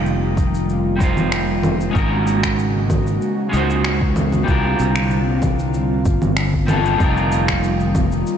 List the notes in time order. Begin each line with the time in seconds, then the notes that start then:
Already playing: F1 D#3 G3 A#3 C4 D#4 F4 A#4
0.06 shaker
0.37 kick, shaker
0.54 shaker
0.69 shaker
0.96 G3 C4 D#4
1.00 F4 C5, kick, shaker
1.17 low conga, shaker
1.32 finger snap, shaker
1.63 low conga, shaker
1.81 shaker
1.91 C#3 G#3 C#4 D#4 F#4
1.95 G#1 F#4 A#4, kick, shaker
2.27 shaker
2.43 finger snap, kick, shaker
2.59 shaker
2.90 kick, low conga, shaker
3.07 shaker
3.22 shaker
3.49 C#2 G#3 C#4 D#4
3.53 F#4 C5, shaker
3.70 shaker
3.84 finger snap, shaker
4.01 kick
4.16 low conga, shaker
4.33 low conga, shaker
4.44 C2 D3 G3 C4 D4 F4, kick
4.48 F4 A#4, shaker
4.79 C2, shaker
4.96 finger snap, shaker
5.11 shaker
5.42 kick, low conga, shaker
5.59 shaker
5.74 shaker
6.05 G1, kick, shaker
6.22 G1, low conga, shaker
6.37 finger snap, shaker
6.54 kick
6.67 G3 C4 D4 F4 A4, low conga, shaker
6.85 shaker
6.97 F1 D#3 G3 A#3 C4 D#4 F4, kick, shaker
7.02 F4 A#4
7.17 shaker
7.32 shaker
7.48 finger snap, kick, shaker
7.64 shaker
7.80 shaker
7.95 kick, low conga, shaker
8.12 shaker
8.27 shaker